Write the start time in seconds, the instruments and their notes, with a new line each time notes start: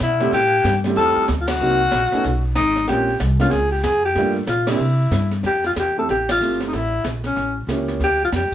0.01 upright bass B2, alto saxophone E4
0.20 grand piano G3 A3 C4 E4 G4, snare
0.32 upright bass A2, alto saxophone G4, brush sweep, snare
0.64 upright bass G2, snare, hi-hat pedal
0.84 grand piano G3 A3 C4 E4 G4, snare
0.96 upright bass E2, alto saxophone A4, brush sweep, snare
1.16 muted upright bass stroke
1.28 upright bass D2, snare, hi-hat pedal
1.41 alto saxophone F4
1.47 alto saxophone F#4, snare, ride
1.60 upright bass C2, grand piano F#3 A#3 C4 D#4 F#4, brush sweep
1.91 upright bass A#1, snare, hi-hat pedal
2.12 grand piano A3 B3 C#4 D#4 G#4, muted upright bass stroke, snare
2.24 upright bass B1, brush sweep, snare
2.55 upright bass G#1, alto saxophone D#4, snare, hi-hat pedal
2.76 snare
2.88 upright bass A#1, grand piano G#3 A#3 C4 C#4 F4, alto saxophone G4, brush sweep, snare
3.20 upright bass C2, snare, hi-hat pedal
3.40 grand piano G#3 A#3 C4 C#4 F4, alto saxophone F4, snare
3.50 upright bass C#2, alto saxophone G#4, brush sweep, snare
3.72 alto saxophone G4
3.83 upright bass F2, alto saxophone G#4, snare, hi-hat pedal
4.05 alto saxophone G4
4.15 upright bass G2, grand piano G3 A3 A#3 D4, brush sweep, snare
4.19 grand piano F4
4.47 upright bass A#2, alto saxophone F4, snare, hi-hat pedal
4.67 grand piano G3 A#3 C4 D4 G4, alto saxophone E4, snare, ride
4.79 upright bass C3, brush sweep
5.11 upright bass G2, snare, hi-hat pedal
5.31 snare
5.43 upright bass F2, alto saxophone G4, brush sweep, snare
5.64 alto saxophone F4, snare
5.76 upright bass E2, snare, hi-hat pedal
5.80 alto saxophone G4
5.97 grand piano A3 C4 E4 G4, alto saxophone A4
6.09 upright bass A1, alto saxophone G4, brush sweep, snare
6.29 alto saxophone F4, snare, ride
6.41 upright bass G1, grand piano A3 C4 E4 G4, hi-hat pedal
6.60 snare
6.68 alto saxophone D#4
6.73 upright bass A1, alto saxophone E4, brush sweep, snare
7.04 upright bass A#1, snare, hi-hat pedal
7.24 alto saxophone C#4, snare
7.36 upright bass A1, brush sweep, snare
7.67 upright bass C#2, grand piano A#3 C#4 E4 G4, snare, hi-hat pedal
7.88 snare
8.00 upright bass D2, brush sweep, snare
8.04 alto saxophone G4
8.25 alto saxophone F4
8.32 upright bass F2, alto saxophone G4, snare, hi-hat pedal